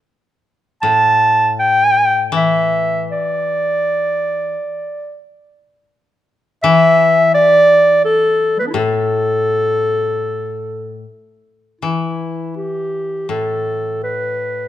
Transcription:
0, 0, Header, 1, 3, 480
1, 0, Start_track
1, 0, Tempo, 750939
1, 34, Time_signature, 4, 2, 24, 8
1, 2433, Tempo, 710900
1, 6273, Tempo, 749064
1, 6753, Tempo, 790514
1, 7713, Tempo, 745342
1, 9554, End_track
2, 0, Start_track
2, 0, Title_t, "Clarinet"
2, 0, Program_c, 0, 71
2, 525, Note_on_c, 0, 81, 101
2, 978, Note_off_c, 0, 81, 0
2, 1020, Note_on_c, 0, 79, 107
2, 1464, Note_off_c, 0, 79, 0
2, 1512, Note_on_c, 0, 76, 90
2, 1953, Note_off_c, 0, 76, 0
2, 1993, Note_on_c, 0, 74, 87
2, 3389, Note_off_c, 0, 74, 0
2, 4339, Note_on_c, 0, 76, 110
2, 4789, Note_off_c, 0, 76, 0
2, 4820, Note_on_c, 0, 74, 119
2, 5268, Note_off_c, 0, 74, 0
2, 5299, Note_on_c, 0, 69, 102
2, 5635, Note_off_c, 0, 69, 0
2, 5650, Note_on_c, 0, 55, 41
2, 5664, Note_off_c, 0, 55, 0
2, 5665, Note_on_c, 0, 71, 89
2, 5673, Note_on_c, 0, 57, 44
2, 5679, Note_off_c, 0, 71, 0
2, 5693, Note_off_c, 0, 57, 0
2, 5697, Note_on_c, 0, 59, 49
2, 5713, Note_off_c, 0, 59, 0
2, 5717, Note_on_c, 0, 62, 53
2, 5732, Note_off_c, 0, 62, 0
2, 5736, Note_on_c, 0, 64, 60
2, 5756, Note_off_c, 0, 64, 0
2, 5760, Note_on_c, 0, 67, 63
2, 5793, Note_off_c, 0, 67, 0
2, 5797, Note_on_c, 0, 69, 94
2, 7216, Note_off_c, 0, 69, 0
2, 7706, Note_on_c, 0, 64, 57
2, 8171, Note_off_c, 0, 64, 0
2, 8191, Note_on_c, 0, 67, 63
2, 8645, Note_off_c, 0, 67, 0
2, 8667, Note_on_c, 0, 69, 66
2, 9124, Note_off_c, 0, 69, 0
2, 9136, Note_on_c, 0, 71, 69
2, 9554, Note_off_c, 0, 71, 0
2, 9554, End_track
3, 0, Start_track
3, 0, Title_t, "Koto"
3, 0, Program_c, 1, 107
3, 530, Note_on_c, 1, 45, 61
3, 1483, Note_on_c, 1, 52, 58
3, 1966, Note_off_c, 1, 45, 0
3, 2919, Note_off_c, 1, 52, 0
3, 4344, Note_on_c, 1, 52, 71
3, 5764, Note_on_c, 1, 45, 65
3, 5776, Note_off_c, 1, 52, 0
3, 7225, Note_off_c, 1, 45, 0
3, 7713, Note_on_c, 1, 52, 44
3, 8657, Note_on_c, 1, 45, 43
3, 9153, Note_off_c, 1, 52, 0
3, 9554, Note_off_c, 1, 45, 0
3, 9554, End_track
0, 0, End_of_file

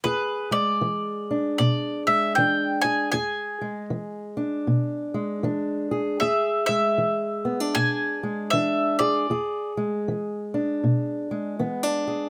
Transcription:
0, 0, Header, 1, 3, 480
1, 0, Start_track
1, 0, Tempo, 769231
1, 26, Time_signature, 4, 2, 24, 8
1, 7669, End_track
2, 0, Start_track
2, 0, Title_t, "Mandolin"
2, 0, Program_c, 0, 25
2, 24, Note_on_c, 0, 71, 72
2, 324, Note_off_c, 0, 71, 0
2, 326, Note_on_c, 0, 74, 76
2, 980, Note_off_c, 0, 74, 0
2, 988, Note_on_c, 0, 74, 75
2, 1262, Note_off_c, 0, 74, 0
2, 1291, Note_on_c, 0, 76, 68
2, 1465, Note_off_c, 0, 76, 0
2, 1468, Note_on_c, 0, 79, 83
2, 1754, Note_off_c, 0, 79, 0
2, 1756, Note_on_c, 0, 80, 84
2, 1934, Note_off_c, 0, 80, 0
2, 1944, Note_on_c, 0, 80, 78
2, 2404, Note_off_c, 0, 80, 0
2, 3868, Note_on_c, 0, 76, 77
2, 4150, Note_off_c, 0, 76, 0
2, 4157, Note_on_c, 0, 76, 82
2, 4834, Note_on_c, 0, 80, 87
2, 4849, Note_off_c, 0, 76, 0
2, 5306, Note_on_c, 0, 76, 83
2, 5328, Note_off_c, 0, 80, 0
2, 5606, Note_off_c, 0, 76, 0
2, 5608, Note_on_c, 0, 74, 71
2, 6062, Note_off_c, 0, 74, 0
2, 7669, End_track
3, 0, Start_track
3, 0, Title_t, "Steel-string acoustic guitar"
3, 0, Program_c, 1, 25
3, 24, Note_on_c, 1, 40, 68
3, 33, Note_on_c, 1, 68, 64
3, 320, Note_on_c, 1, 56, 51
3, 469, Note_off_c, 1, 40, 0
3, 507, Note_on_c, 1, 52, 61
3, 815, Note_on_c, 1, 62, 52
3, 951, Note_off_c, 1, 52, 0
3, 996, Note_on_c, 1, 47, 61
3, 1293, Note_off_c, 1, 56, 0
3, 1296, Note_on_c, 1, 56, 51
3, 1436, Note_off_c, 1, 47, 0
3, 1484, Note_on_c, 1, 52, 60
3, 1486, Note_off_c, 1, 62, 0
3, 1489, Note_on_c, 1, 62, 59
3, 1773, Note_off_c, 1, 68, 0
3, 1776, Note_on_c, 1, 68, 61
3, 1921, Note_off_c, 1, 52, 0
3, 1952, Note_on_c, 1, 40, 68
3, 1955, Note_off_c, 1, 68, 0
3, 1958, Note_on_c, 1, 68, 59
3, 1971, Note_off_c, 1, 62, 0
3, 2253, Note_off_c, 1, 56, 0
3, 2255, Note_on_c, 1, 56, 54
3, 2395, Note_off_c, 1, 40, 0
3, 2435, Note_on_c, 1, 52, 59
3, 2726, Note_on_c, 1, 62, 58
3, 2877, Note_off_c, 1, 52, 0
3, 2915, Note_on_c, 1, 47, 62
3, 3207, Note_off_c, 1, 56, 0
3, 3209, Note_on_c, 1, 56, 51
3, 3357, Note_off_c, 1, 47, 0
3, 3389, Note_on_c, 1, 52, 61
3, 3392, Note_off_c, 1, 62, 0
3, 3395, Note_on_c, 1, 62, 58
3, 3687, Note_off_c, 1, 68, 0
3, 3690, Note_on_c, 1, 68, 58
3, 3834, Note_off_c, 1, 52, 0
3, 3876, Note_on_c, 1, 40, 72
3, 3877, Note_off_c, 1, 68, 0
3, 3879, Note_on_c, 1, 68, 62
3, 3895, Note_off_c, 1, 62, 0
3, 4171, Note_off_c, 1, 56, 0
3, 4173, Note_on_c, 1, 56, 59
3, 4318, Note_off_c, 1, 40, 0
3, 4355, Note_on_c, 1, 52, 54
3, 4648, Note_on_c, 1, 59, 55
3, 4744, Note_off_c, 1, 59, 0
3, 4744, Note_on_c, 1, 62, 50
3, 4797, Note_off_c, 1, 52, 0
3, 4840, Note_on_c, 1, 47, 65
3, 5130, Note_off_c, 1, 56, 0
3, 5137, Note_on_c, 1, 56, 53
3, 5280, Note_off_c, 1, 47, 0
3, 5315, Note_off_c, 1, 62, 0
3, 5323, Note_on_c, 1, 52, 66
3, 5327, Note_on_c, 1, 62, 60
3, 5610, Note_off_c, 1, 68, 0
3, 5618, Note_on_c, 1, 68, 60
3, 5761, Note_off_c, 1, 52, 0
3, 5776, Note_off_c, 1, 56, 0
3, 5777, Note_off_c, 1, 68, 0
3, 5778, Note_off_c, 1, 62, 0
3, 5802, Note_on_c, 1, 40, 69
3, 5808, Note_on_c, 1, 68, 60
3, 6098, Note_on_c, 1, 56, 57
3, 6240, Note_off_c, 1, 40, 0
3, 6291, Note_on_c, 1, 52, 57
3, 6577, Note_on_c, 1, 62, 55
3, 6723, Note_off_c, 1, 52, 0
3, 6762, Note_on_c, 1, 47, 57
3, 7050, Note_off_c, 1, 56, 0
3, 7058, Note_on_c, 1, 56, 54
3, 7198, Note_off_c, 1, 47, 0
3, 7232, Note_off_c, 1, 62, 0
3, 7235, Note_on_c, 1, 59, 60
3, 7237, Note_on_c, 1, 52, 61
3, 7382, Note_off_c, 1, 59, 0
3, 7382, Note_on_c, 1, 62, 45
3, 7527, Note_off_c, 1, 68, 0
3, 7535, Note_on_c, 1, 68, 53
3, 7669, Note_off_c, 1, 52, 0
3, 7669, Note_off_c, 1, 56, 0
3, 7669, Note_off_c, 1, 62, 0
3, 7669, Note_off_c, 1, 68, 0
3, 7669, End_track
0, 0, End_of_file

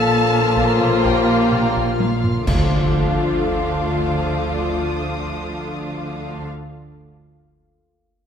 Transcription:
0, 0, Header, 1, 14, 480
1, 0, Start_track
1, 0, Key_signature, -1, "minor"
1, 0, Tempo, 952381
1, 1484, Time_signature, 4, 2, 24, 8
1, 4165, End_track
2, 0, Start_track
2, 0, Title_t, "Violin section"
2, 0, Program_c, 0, 48
2, 0, Note_on_c, 0, 89, 73
2, 0, Note_on_c, 0, 95, 79
2, 749, Note_off_c, 0, 95, 0
2, 1229, Note_off_c, 0, 89, 0
2, 1245, Note_on_c, 0, 86, 50
2, 1961, Note_on_c, 0, 87, 58
2, 3142, Note_off_c, 0, 87, 0
2, 3144, Note_off_c, 0, 86, 0
2, 4165, End_track
3, 0, Start_track
3, 0, Title_t, "Violin section"
3, 0, Program_c, 1, 48
3, 0, Note_on_c, 1, 81, 127
3, 523, Note_off_c, 1, 81, 0
3, 526, Note_on_c, 1, 79, 94
3, 1005, Note_off_c, 1, 79, 0
3, 1006, Note_on_c, 1, 77, 68
3, 1240, Note_off_c, 1, 77, 0
3, 1251, Note_on_c, 1, 77, 71
3, 3255, Note_off_c, 1, 77, 0
3, 4165, End_track
4, 0, Start_track
4, 0, Title_t, "Ambient pad"
4, 0, Program_c, 2, 92
4, 0, Note_on_c, 2, 65, 78
4, 0, Note_on_c, 2, 73, 79
4, 0, Note_on_c, 2, 77, 74
4, 1224, Note_off_c, 2, 65, 0
4, 1227, Note_off_c, 2, 77, 0
4, 1229, Note_off_c, 2, 73, 0
4, 1247, Note_on_c, 2, 65, 64
4, 1247, Note_on_c, 2, 77, 67
4, 1248, Note_on_c, 2, 69, 66
4, 3250, Note_off_c, 2, 65, 0
4, 3251, Note_off_c, 2, 69, 0
4, 3251, Note_off_c, 2, 77, 0
4, 4165, End_track
5, 0, Start_track
5, 0, Title_t, "Clarinet"
5, 0, Program_c, 3, 71
5, 0, Note_on_c, 3, 69, 115
5, 529, Note_on_c, 3, 67, 82
5, 537, Note_off_c, 3, 69, 0
5, 1007, Note_on_c, 3, 65, 61
5, 1015, Note_off_c, 3, 67, 0
5, 1246, Note_off_c, 3, 65, 0
5, 1250, Note_on_c, 3, 65, 59
5, 3254, Note_off_c, 3, 65, 0
5, 4165, End_track
6, 0, Start_track
6, 0, Title_t, "Violin section"
6, 0, Program_c, 4, 48
6, 0, Note_on_c, 4, 65, 95
6, 1221, Note_off_c, 4, 65, 0
6, 1245, Note_on_c, 4, 65, 59
6, 1247, Note_on_c, 4, 62, 58
6, 3249, Note_off_c, 4, 65, 0
6, 3250, Note_off_c, 4, 62, 0
6, 4165, End_track
7, 0, Start_track
7, 0, Title_t, "French horn section"
7, 0, Program_c, 5, 60
7, 0, Note_on_c, 5, 53, 98
7, 0, Note_on_c, 5, 65, 93
7, 1221, Note_off_c, 5, 53, 0
7, 1221, Note_off_c, 5, 65, 0
7, 1243, Note_on_c, 5, 53, 57
7, 1249, Note_on_c, 5, 65, 59
7, 3246, Note_off_c, 5, 53, 0
7, 3252, Note_off_c, 5, 65, 0
7, 4165, End_track
8, 0, Start_track
8, 0, Title_t, "Viola section"
8, 0, Program_c, 6, 48
8, 0, Note_on_c, 6, 58, 106
8, 1222, Note_off_c, 6, 58, 0
8, 1239, Note_on_c, 6, 57, 59
8, 1241, Note_on_c, 6, 53, 58
8, 3243, Note_off_c, 6, 57, 0
8, 3245, Note_off_c, 6, 53, 0
8, 4165, End_track
9, 0, Start_track
9, 0, Title_t, "Cello section"
9, 0, Program_c, 7, 48
9, 0, Note_on_c, 7, 46, 88
9, 1223, Note_off_c, 7, 46, 0
9, 1243, Note_on_c, 7, 50, 60
9, 3246, Note_off_c, 7, 50, 0
9, 4165, End_track
10, 0, Start_track
10, 0, Title_t, "Harp"
10, 0, Program_c, 8, 46
10, 0, Note_on_c, 8, 58, 68
10, 38, Note_on_c, 8, 46, 65
10, 270, Note_off_c, 8, 46, 0
10, 276, Note_on_c, 8, 46, 88
10, 514, Note_off_c, 8, 46, 0
10, 759, Note_on_c, 8, 46, 57
10, 994, Note_off_c, 8, 46, 0
10, 1000, Note_on_c, 8, 46, 71
10, 1242, Note_off_c, 8, 46, 0
10, 1244, Note_off_c, 8, 58, 0
10, 4165, End_track
11, 0, Start_track
11, 0, Title_t, "Double bass section"
11, 0, Program_c, 10, 48
11, 0, Note_on_c, 10, 34, 87
11, 1222, Note_off_c, 10, 34, 0
11, 1241, Note_on_c, 10, 38, 60
11, 3245, Note_off_c, 10, 38, 0
11, 4165, End_track
12, 0, Start_track
12, 0, Title_t, "Impact"
12, 0, Program_c, 11, 103
12, 1246, Note_on_c, 11, 60, 62
12, 3270, Note_off_c, 11, 60, 0
12, 4165, End_track
13, 0, Start_track
13, 0, Title_t, "Taiko and cinematic ensemble drums"
13, 285, Note_on_c, 9, 41, 79
13, 335, Note_off_c, 9, 41, 0
13, 408, Note_on_c, 9, 47, 53
13, 458, Note_off_c, 9, 47, 0
13, 529, Note_on_c, 9, 41, 83
13, 579, Note_off_c, 9, 41, 0
13, 768, Note_on_c, 9, 47, 64
13, 818, Note_off_c, 9, 47, 0
13, 890, Note_on_c, 9, 41, 76
13, 940, Note_off_c, 9, 41, 0
13, 1009, Note_on_c, 9, 48, 82
13, 1060, Note_off_c, 9, 48, 0
13, 1128, Note_on_c, 9, 45, 85
13, 1179, Note_off_c, 9, 45, 0
13, 1247, Note_on_c, 9, 41, 93
13, 1297, Note_off_c, 9, 41, 0
13, 4165, End_track
14, 0, Start_track
14, 0, Title_t, "Drums"
14, 1246, Note_on_c, 9, 35, 75
14, 1246, Note_on_c, 9, 49, 65
14, 1296, Note_off_c, 9, 35, 0
14, 1296, Note_off_c, 9, 49, 0
14, 4165, End_track
0, 0, End_of_file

